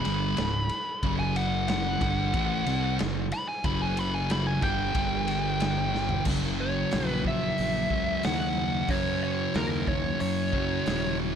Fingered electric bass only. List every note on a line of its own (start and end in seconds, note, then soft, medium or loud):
0.06 0.36 G1 medium
0.39 0.69 C#1 medium
1.03 1.98 F#1 loud
2.01 2.32 G1 loud
2.34 2.65 A1 loud
2.67 2.98 C2 medium
3.00 3.31 F#1 medium
3.64 4.59 F#1 loud
4.62 4.94 G1 loud
4.95 6.23 G1 medium
6.26 6.83 F#1 loud
6.94 7.50 A#1 medium
7.59 7.87 A#1 medium
7.90 8.19 C#2 medium
8.25 8.81 D#2 medium
8.89 9.46 F#2 medium
9.55 10.12 D#2 medium
10.21 10.78 F#2 medium
10.87 11.35 D#1 medium